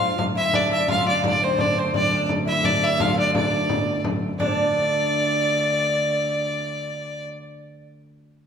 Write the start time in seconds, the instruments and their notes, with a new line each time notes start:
Already playing: viola da gamba D2, lute F4, fiddle F5
0.01 recorder F5
0.18 viola da gamba D2, frame drum
0.35 lute E4, recorder E5, fiddle E5, frame drum
0.53 lute D4, recorder D5, fiddle D5, frame drum
0.71 lute E4, fiddle E5, frame drum
0.88 lute F4, recorder F5, fiddle F5, frame drum
1.07 lute D4, fiddle D5
1.23 lute D4, recorder D5, fiddle D5, frame drum
1.41 lute C4, recorder C5, fiddle C5, frame drum
1.58 lute D4, recorder D5, fiddle D5, frame drum
1.76 lute C4, recorder C5, fiddle C5, frame drum
1.93 lute D4, recorder D5, fiddle D5, frame drum
2.14 lute D4
2.29 frame drum
2.45 lute E4, recorder E5, fiddle E5
2.63 lute D4, recorder D5, fiddle D5, frame drum
2.82 lute E4, fiddle E5, frame drum
2.99 lute F4, recorder F5, fiddle F5, frame drum
3.13 lute D4 E4, recorder D5
3.19 fiddle D5
3.34 lute D4, recorder D5, fiddle D5, frame drum
3.53 frame drum
3.69 frame drum
3.87 frame drum
4.04 frame drum
4.39 viola da gamba D2, lute D4, fiddle D5, recorder D5, frame drum
4.47 recorder C5
4.53 recorder D5